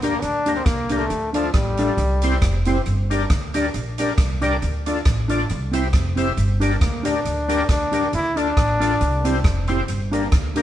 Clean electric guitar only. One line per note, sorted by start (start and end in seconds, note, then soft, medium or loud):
0.03 0.13 D4 medium
0.03 0.13 G4 medium
0.03 0.13 A#4 medium
0.03 0.13 D5 medium
0.46 0.56 D4 medium
0.46 0.57 G4 medium
0.46 0.57 A#4 medium
0.46 0.58 D5 loud
0.90 1.00 D4 medium
0.90 1.01 G4 medium
0.90 1.01 A#4 medium
0.90 1.01 D5 medium
1.33 1.44 D4 medium
1.33 1.44 F4 medium
1.33 1.45 A4 medium
1.33 1.45 D5 medium
1.79 1.88 D4 medium
1.79 1.89 F4 medium
1.79 1.89 A4 medium
1.79 1.89 D5 medium
2.24 2.33 C4 medium
2.24 2.33 E4 medium
2.24 2.33 G4 medium
2.24 2.34 C5 loud
2.66 2.76 C4 medium
2.66 2.76 E4 medium
2.66 2.77 G4 medium
2.66 2.77 C5 medium
3.11 3.20 D4 medium
3.11 3.21 G4 medium
3.11 3.21 A#4 medium
3.11 3.21 D5 medium
3.55 3.64 D4 medium
3.55 3.65 G4 medium
3.55 3.65 A#4 medium
3.55 3.65 D5 loud
4.00 4.09 D4 medium
4.00 4.09 G4 medium
4.00 4.09 A#4 medium
4.00 4.10 D5 medium
4.41 4.51 D4 medium
4.41 4.52 G4 medium
4.41 4.52 A#4 medium
4.41 4.52 D5 medium
4.87 4.96 D4 medium
4.87 4.97 F4 medium
4.87 4.97 A4 medium
4.87 4.97 D5 medium
5.28 5.39 D4 medium
5.28 5.39 F4 medium
5.28 5.40 A4 medium
5.28 5.40 D5 medium
5.71 5.82 C4 medium
5.71 5.83 E4 medium
5.71 5.83 G4 loud
5.71 5.83 C5 medium
6.16 6.26 C4 medium
6.16 6.27 E4 medium
6.16 6.27 G4 medium
6.16 6.27 C5 medium
6.60 6.71 D4 medium
6.60 6.71 G4 medium
6.60 6.71 A#4 medium
6.60 6.72 D5 medium
7.03 7.14 D4 medium
7.03 7.15 G4 medium
7.03 7.15 A#4 medium
7.03 7.15 D5 medium
7.48 7.59 D4 medium
7.48 7.59 G4 medium
7.48 7.59 A#4 medium
7.48 7.59 D5 medium
7.92 8.02 D4 medium
7.92 8.03 G4 medium
7.92 8.03 A#4 medium
7.92 8.03 D5 medium
8.36 8.46 D4 medium
8.36 8.47 F4 medium
8.36 8.47 A4 medium
8.36 8.47 D5 medium
8.80 8.90 D4 medium
8.80 8.91 F4 medium
8.80 8.91 A4 loud
8.80 8.91 D5 medium
9.25 9.35 C4 medium
9.25 9.35 E4 medium
9.25 9.35 G4 medium
9.25 9.35 C5 medium
9.69 9.79 C4 medium
9.69 9.79 E4 medium
9.69 9.79 G4 medium
9.69 9.80 C5 medium
10.11 10.22 D4 medium
10.11 10.23 G4 medium
10.11 10.23 A#4 medium
10.11 10.23 D5 loud
10.56 10.62 D4 medium
10.56 10.62 G4 medium
10.56 10.62 A#4 medium
10.56 10.62 D5 medium